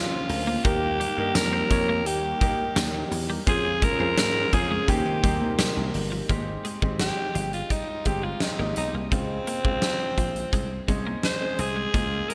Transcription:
Already playing: analog synth pad C#3 A#3 F4 C5, grand piano C4 C#4 F4 G4 G#4 A#4, analog polysynth C#4 F4 C5, alto saxophone F4
0.13 muted clean electric guitar stroke
0.29 slap bass D2, open hi-hat
0.47 clean electric guitar A#3
0.64 slap bass D#2, analog synth pad D#3 G3 G4, grand piano A#3 D#4 G4 A#4, clean electric guitar A#3, analog polysynth D#4 G4 A#4, alto saxophone G4, kick, closed hi-hat
1.00 clean electric guitar G3, closed hi-hat
1.17 slap bass G2, grand piano A#3 D#4 G4 A#4, muted clean electric guitar stroke
1.35 slap bass F2, alto saxophone A#4, snare, closed hi-hat, tambourine
1.53 clean electric guitar C4
1.70 slap bass F2, grand piano A#3 D#4 G4 C#5, muted clean electric guitar stroke, kick, closed hi-hat
1.89 clean electric guitar A#3
2.05 slap bass D#2, alto saxophone G4, closed hi-hat
2.40 clean electric guitar G3, grand piano A#3 D#4 G4 A#4, kick, closed hi-hat
2.76 slap bass D#2, clean electric guitar A#3, snare, closed hi-hat, tambourine
2.94 muted clean electric guitar stroke
3.11 slap bass E2, open hi-hat
3.30 clean electric guitar G3
3.46 slap bass F2, analog synth pad C#3 G#3 C#4 F4, grand piano C#4 F4 G#4 C5, analog polysynth F4 G#4 C#5, alto saxophone G#4, kick, closed hi-hat
3.65 muted clean electric guitar stroke
3.82 clean electric guitar G#3, alto saxophone A#4, kick, closed hi-hat
3.99 slap bass F2, clean electric guitar C4, grand piano C#4 F4 G#4 C5
4.17 slap bass G#2, clean electric guitar A#3, snare, closed hi-hat, tambourine
4.52 slap bass F2, grand piano C#4 F4 G#4 C5, alto saxophone G#4, muted clean electric guitar stroke, kick, closed hi-hat
4.71 clean electric guitar G#3
4.87 slap bass D#2, analog synth pad C3 G3 A#3 D#4, grand piano A#3 C4 D#4 G4, analog polysynth D#4 G4 A#4, alto saxophone G4, kick, closed hi-hat
5.05 slap bass D#3
5.23 slap bass D#2, clean electric guitar G3, grand piano A#3 C4 D#4 G4, kick, closed hi-hat
5.41 slap bass D#2
5.59 clean electric guitar G3, snare, closed hi-hat, tambourine
5.77 slap bass C2, muted clean electric guitar stroke
5.94 slap bass G1, open hi-hat
6.12 clean electric guitar F3
6.29 slap bass G#1, grand piano G#3 C4 D#4 G4, clean electric guitar A#3, kick, closed hi-hat
6.65 clean electric guitar G#3, closed hi-hat
6.82 slap bass G#1, grand piano G#3 C4 D#4 G4, muted clean electric guitar stroke, kick
6.99 alto saxophone G4, snare, closed hi-hat
7.35 slap bass G1, clean electric guitar F3, closed hi-hat
7.53 alto saxophone F4, closed hi-hat
7.70 clean electric guitar G3, alto saxophone D#4, kick, closed hi-hat
8.05 slap bass G1, grand piano G#3 C4 D#4 G4, alto saxophone G4, muted clean electric guitar stroke, kick, closed hi-hat
8.23 clean electric guitar G#3, alto saxophone F4
8.40 alto saxophone D#4, snare, closed hi-hat
8.58 slap bass G#1, grand piano G#3 C4 D#4 G4, clean electric guitar A#3
8.76 slap bass B1, alto saxophone D#4, muted clean electric guitar stroke, closed hi-hat
8.94 slap bass C2, clean electric guitar A#3
9.11 slap bass C#2, grand piano C#3 G#3 C4 F4, clean electric guitar C4, alto saxophone C4, kick, closed hi-hat
9.47 clean electric guitar A#3, closed hi-hat
9.64 slap bass C#2, grand piano C#3 G#3 C4 F4, muted clean electric guitar stroke, kick
9.82 snare, closed hi-hat
10.18 slap bass A#1, clean electric guitar F3, kick, closed hi-hat
10.36 closed hi-hat
10.53 slap bass C2, clean electric guitar G#3, kick, closed hi-hat
10.88 slap bass C2, grand piano G#3 C4 C#4 D#4, muted clean electric guitar stroke, kick, closed hi-hat
11.07 clean electric guitar A#3
11.23 alto saxophone C5, muted clean electric guitar stroke, snare, closed hi-hat
11.40 grand piano G#3 C4 C#4 G#4
11.59 slap bass C2, clean electric guitar C4, alto saxophone G#4, closed hi-hat
11.76 clean electric guitar G#3
11.93 slap bass C#2, grand piano G#3 A#3 C#4 F4, clean electric guitar A#3, kick, closed hi-hat
12.30 clean electric guitar G#3, alto saxophone A#4, closed hi-hat

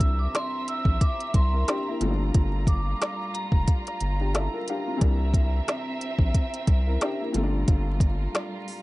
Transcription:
Already playing: analog synth bass C2, upright piano C3 E3 G3 A#3 D4, string section C4 E5 A#5, vibraphone E6
0.00 kick, closed hi-hat
0.19 vibraphone D6
0.35 vibraphone C6, cross-stick, snare, closed hi-hat
0.68 vibraphone E6, closed hi-hat
0.85 analog synth bass A#1, kick
1.01 vibraphone D6, kick, closed hi-hat
1.20 closed hi-hat
1.34 analog synth bass C2, vibraphone C6, kick, closed hi-hat
1.54 upright piano E4 A#4
1.68 upright piano D4 G4, cross-stick, snare, closed hi-hat
1.88 upright piano A#3 E4
1.99 analog synth bass G1, upright piano A#2 F3 G3 A3, string section G3 F4, closed hi-hat
2.04 upright piano C4
2.11 upright piano D4
2.34 analog synth bass G1, kick, closed hi-hat
2.67 vibraphone D6, kick, closed hi-hat
3.02 cross-stick, snare, closed hi-hat
3.34 vibraphone A#5, closed hi-hat
3.52 analog synth bass F1, kick
3.68 kick, closed hi-hat
3.87 snare, closed hi-hat
4.01 analog synth bass G1, closed hi-hat
4.20 upright piano D4 G4
4.34 upright piano E4 A4 E5, cross-stick, snare, closed hi-hat
4.53 upright piano F4 A#4
4.68 upright piano D4 G4 F5, closed hi-hat
4.87 upright piano C4 F4
4.97 upright piano C3 E3 G3 A#3
5.01 analog synth bass C2, string section C4 E5, upright piano D4, kick, closed hi-hat
5.34 kick, closed hi-hat
5.68 cross-stick, snare, closed hi-hat
6.01 closed hi-hat
6.19 analog synth bass A#1, kick
6.34 kick, closed hi-hat
6.54 closed hi-hat
6.67 analog synth bass C2, kick, closed hi-hat
6.86 upright piano E4 A#4
7.01 upright piano D4 G4, cross-stick, snare, closed hi-hat
7.21 upright piano A#3 E4
7.32 analog synth bass G1, upright piano A#2 F3 G3 A3, string section G3 F4, closed hi-hat
7.37 upright piano C4
7.43 upright piano D4
7.68 analog synth bass G1, kick, closed hi-hat
8.00 kick, closed hi-hat
8.35 cross-stick, snare, closed hi-hat
8.68 open hi-hat

